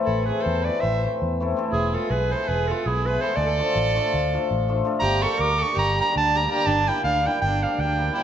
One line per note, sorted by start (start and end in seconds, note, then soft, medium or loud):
0.00 0.26 E3 medium
0.04 0.30 A1 medium
0.04 0.24 E4 medium
0.04 0.25 A4 medium
0.25 0.64 E3 medium
0.25 0.40 A3 medium
0.25 0.40 C4 medium
0.25 0.40 E4 medium
0.25 0.42 G#4 medium
0.25 0.44 B4 medium
0.29 0.40 A4 medium
0.41 0.64 A4 medium
0.41 0.66 C5 medium
0.46 0.69 E2 medium
0.62 1.02 E3 medium
0.62 0.78 A3 medium
0.62 0.78 C4 medium
0.62 0.82 B4 medium
0.62 0.82 D5 loud
0.67 0.78 E4 medium
0.67 0.79 A4 medium
0.80 1.06 A1 medium
0.80 1.03 C5 medium
0.80 1.03 E5 loud
1.04 1.39 E3 medium
1.04 1.16 A3 medium
1.04 1.16 C4 medium
1.04 1.17 E4 medium
1.04 1.17 A4 medium
1.22 1.52 E2 medium
1.40 1.55 E3 medium
1.40 1.52 A3 medium
1.40 1.52 C4 medium
1.40 1.52 E4 medium
1.40 1.53 A4 medium
1.56 1.77 E3 medium
1.56 1.68 A3 medium
1.56 1.68 C4 medium
1.56 1.69 E4 medium
1.56 1.69 A4 loud
1.72 1.95 E1 medium
1.72 1.95 E4 medium
1.72 1.96 G#4 loud
1.93 2.29 E3 medium
1.93 2.30 G#3 medium
1.93 2.05 B3 medium
1.93 2.06 E4 medium
1.93 2.11 F4 medium
1.93 2.06 G#4 medium
1.93 2.13 A4 medium
2.09 2.33 B1 loud
2.09 2.33 G#4 medium
2.09 2.33 B4 medium
2.30 2.67 E3 medium
2.30 2.68 G#3 medium
2.30 2.43 B3 medium
2.30 2.44 E4 medium
2.30 2.44 G#4 medium
2.30 2.50 A4 medium
2.30 2.49 C5 medium
2.48 2.71 E1 medium
2.48 2.72 G#4 medium
2.48 2.69 B4 loud
2.68 3.04 E3 medium
2.68 3.05 G#3 medium
2.68 2.82 B3 medium
2.68 2.82 E4 medium
2.68 2.89 F4 medium
2.68 2.82 G#4 medium
2.68 2.87 A4 medium
2.86 3.17 B1 medium
2.86 3.09 E4 medium
2.86 3.07 G#4 loud
3.05 3.20 E3 medium
3.05 3.21 G#3 medium
3.05 3.18 B3 medium
3.05 3.17 E4 medium
3.05 3.18 G#4 medium
3.05 3.23 G#4 medium
3.05 3.22 B4 medium
3.21 3.43 E3 medium
3.21 3.43 G#3 medium
3.21 3.33 B3 medium
3.21 3.34 E4 medium
3.21 3.34 G#4 medium
3.21 3.37 A4 medium
3.21 3.37 C5 loud
3.36 3.60 D2 loud
3.36 4.71 A4 loud
3.36 4.70 D5 loud
3.58 3.94 F3 medium
3.58 3.71 A3 medium
3.58 3.71 D4 medium
3.58 3.71 F4 medium
3.58 3.71 A4 medium
3.75 3.98 A1 loud
3.95 4.32 F3 medium
3.95 4.08 A3 medium
3.95 4.08 D4 medium
3.95 4.09 F4 medium
3.95 4.08 A4 medium
4.14 4.37 D2 medium
4.33 4.67 F3 medium
4.33 4.46 A3 medium
4.33 4.46 D4 medium
4.33 4.46 F4 medium
4.33 4.47 A4 medium
4.51 4.81 A1 loud
4.68 4.84 F3 medium
4.68 4.81 A3 medium
4.68 4.81 D4 medium
4.68 4.82 F4 medium
4.68 4.81 A4 medium
4.85 5.08 F3 medium
4.85 4.97 A3 medium
4.85 4.97 D4 medium
4.85 4.98 F4 medium
4.85 4.98 A4 loud
4.99 5.25 G1 loud
4.99 5.23 G4 loud
4.99 5.24 A#5 loud
5.22 5.59 G3 medium
5.22 5.35 A#3 medium
5.22 5.35 D4 medium
5.22 5.35 G4 medium
5.22 5.39 A4 loud
5.22 5.36 A#4 medium
5.22 5.42 C#6 loud
5.37 5.62 D2 medium
5.37 5.60 A#4 loud
5.37 5.64 D6 loud
5.58 5.97 G3 medium
5.58 5.73 A#3 medium
5.58 5.73 D4 medium
5.58 5.74 A4 medium
5.62 5.74 G4 medium
5.62 5.74 A#4 medium
5.62 5.78 C#6 loud
5.74 6.00 G1 loud
5.74 5.96 G4 medium
5.79 5.98 A#5 loud
5.98 6.34 G3 medium
5.98 6.11 A#3 soft
5.98 6.11 D4 medium
5.98 6.14 G4 medium
5.98 6.11 G4 medium
5.98 6.12 A#4 medium
5.98 6.15 A#5 loud
6.14 6.46 D2 medium
6.14 6.37 D4 medium
6.14 6.38 A5 loud
6.35 6.49 G3 medium
6.35 6.46 A#3 medium
6.35 6.47 D4 medium
6.35 6.50 G4 medium
6.35 6.47 G4 medium
6.35 6.47 A#4 medium
6.35 6.51 A#5 loud
6.50 6.86 G3 medium
6.50 6.62 A#3 medium
6.50 6.62 D4 medium
6.50 6.69 G4 loud
6.50 6.62 G4 medium
6.50 6.62 A#4 medium
6.50 6.67 A#5 loud
6.66 6.89 G1 loud
6.66 6.90 D4 loud
6.66 6.89 A5 loud
6.87 7.24 G3 medium
6.87 6.99 A#3 medium
6.87 7.00 D4 medium
6.87 7.04 E4 medium
6.87 7.00 G4 medium
6.87 7.00 A#4 medium
6.87 7.03 G5 loud
7.04 7.27 D2 medium
7.04 7.29 D4 medium
7.04 7.28 F5 loud
7.25 7.61 G3 medium
7.25 7.37 A#3 medium
7.25 7.37 D4 medium
7.25 7.43 E4 medium
7.25 7.37 G4 medium
7.25 7.37 A#4 medium
7.25 7.40 G5 loud
7.41 7.64 G1 loud
7.41 7.63 D4 medium
7.41 7.64 G5 loud
7.63 7.97 G3 medium
7.63 7.74 A#3 medium
7.63 7.80 D4 medium
7.63 7.75 D4 medium
7.63 7.75 G4 medium
7.63 7.75 A#4 medium
7.63 7.81 F5 loud
7.79 8.09 D2 medium
7.79 8.14 D4 medium
7.79 8.14 G5 loud
7.98 8.12 G3 medium
7.98 8.09 A#3 medium
7.98 8.09 D4 medium
7.98 8.10 G4 medium
7.98 8.10 A#4 medium
8.13 8.23 G3 medium
8.13 8.23 A#3 medium
8.13 8.23 D4 medium
8.13 8.23 E4 medium
8.13 8.23 G4 medium
8.13 8.23 A#4 medium
8.13 8.23 G5 medium